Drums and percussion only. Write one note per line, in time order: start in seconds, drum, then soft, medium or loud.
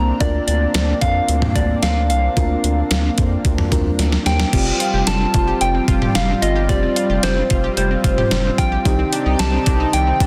0.20 kick loud
0.20 closed hi-hat medium
0.48 closed hi-hat medium
0.74 snare loud
0.74 closed hi-hat medium
1.01 kick loud
1.01 closed hi-hat medium
1.28 closed hi-hat medium
1.42 mid tom loud
1.56 kick medium
1.56 closed hi-hat medium
1.83 snare loud
1.83 closed hi-hat medium
2.10 closed hi-hat medium
2.37 kick loud
2.37 closed hi-hat medium
2.64 closed hi-hat medium
2.91 snare loud
2.91 closed hi-hat medium
3.18 kick medium
3.18 closed hi-hat medium
3.45 kick medium
3.45 closed hi-hat medium
3.58 mid tom loud
3.72 kick medium
3.72 closed hi-hat medium
3.72 mid tom loud
3.99 snare medium
3.99 closed hi-hat medium
4.12 snare medium
4.26 snare medium
4.26 closed hi-hat medium
4.40 snare medium
4.53 kick loud
4.53 closed hi-hat medium
4.53 crash loud
4.80 closed hi-hat medium
5.07 snare loud
5.07 closed hi-hat medium
5.34 kick loud
5.34 closed hi-hat medium
5.61 closed hi-hat medium
5.88 kick medium
5.88 closed hi-hat medium
6.02 mid tom medium
6.15 snare loud
6.15 closed hi-hat medium
6.42 closed hi-hat medium
6.69 kick loud
6.69 closed hi-hat medium
6.96 closed hi-hat medium
7.23 snare loud
7.23 closed hi-hat medium
7.50 kick loud
7.50 closed hi-hat medium
7.77 closed hi-hat medium
8.04 kick loud
8.04 closed hi-hat medium
8.18 mid tom medium
8.31 snare loud
8.31 closed hi-hat medium
8.58 kick medium
8.58 closed hi-hat medium
8.85 kick loud
8.85 closed hi-hat medium
9.13 closed hi-hat medium
9.39 snare loud
9.39 closed hi-hat medium
9.66 kick loud
9.66 closed hi-hat medium
9.93 closed hi-hat medium
10.20 kick medium
10.20 closed hi-hat medium